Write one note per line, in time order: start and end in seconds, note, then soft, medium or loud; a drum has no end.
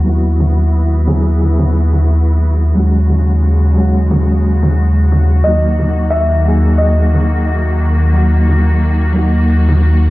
0.00 2.71 F#4 medium
0.04 2.73 D#2 medium
0.04 1.03 F#3 medium
0.04 2.72 B3 medium
0.04 1.03 B3 medium
0.04 2.72 E4 medium
0.04 1.04 E4 medium
0.04 closed hi-hat medium
0.10 1.05 F#4 medium
0.40 snare soft
0.40 closed hi-hat medium
0.73 closed hi-hat medium
1.07 1.17 F#3 medium
1.07 1.17 B3 medium
1.07 1.18 E4 medium
1.07 1.18 G#4 medium
1.07 snare medium
1.07 closed hi-hat medium
1.41 snare soft
1.41 closed hi-hat soft
1.59 snare medium
1.59 closed hi-hat medium
1.92 snare soft
1.92 closed hi-hat medium
2.07 closed hi-hat medium
2.27 closed hi-hat soft
2.42 closed hi-hat medium
2.60 closed hi-hat soft
2.74 5.42 D#2 medium
2.74 5.42 C#3 medium
2.74 3.72 F#3 medium
2.74 5.42 G#3 medium
2.74 3.73 G#3 medium
2.74 3.74 C#4 medium
2.74 10.10 F#4 medium
2.74 open hi-hat medium
2.80 3.75 F#4 medium
3.09 snare soft
3.09 closed hi-hat medium
3.43 closed hi-hat medium
3.75 5.41 F#3 medium
3.75 5.41 G#3 medium
3.75 5.42 C#4 medium
3.75 closed hi-hat medium
3.80 5.43 F#4 medium
4.10 snare medium
4.10 closed hi-hat medium
4.44 closed hi-hat medium
4.62 snare medium
4.62 closed hi-hat medium
4.96 closed hi-hat medium
5.11 snare soft
5.11 closed hi-hat medium
5.43 10.10 D#2 medium
5.43 10.10 D#3 medium
5.43 6.42 F#3 medium
5.43 10.10 A#3 medium
5.43 6.43 A#3 medium
5.43 6.43 D#4 medium
5.43 6.14 D#5 medium
5.43 closed hi-hat medium
5.49 6.44 F#4 medium
5.79 snare soft
5.79 closed hi-hat medium
6.10 6.81 E5 loud
6.10 closed hi-hat medium
6.46 6.56 F#3 medium
6.46 6.56 A#3 medium
6.46 6.57 D#4 medium
6.46 6.57 G#4 medium
6.46 closed hi-hat medium
6.78 7.76 D#5 medium
6.78 closed hi-hat medium
7.13 snare soft
7.13 closed hi-hat medium
7.32 closed hi-hat soft
7.47 closed hi-hat medium
7.65 closed hi-hat soft
7.81 closed hi-hat medium
7.99 closed hi-hat soft
8.13 9.11 F#3 medium
8.13 9.12 A#3 medium
8.13 9.13 D#4 medium
8.13 open hi-hat medium
8.18 9.14 F#4 medium
8.49 snare soft
8.49 closed hi-hat medium
8.82 closed hi-hat medium
9.14 10.10 F#3 medium
9.14 10.10 A#3 medium
9.14 10.10 D#4 medium
9.14 closed hi-hat medium
9.19 10.10 F#4 medium
9.49 closed hi-hat medium
9.69 snare soft
9.83 closed hi-hat medium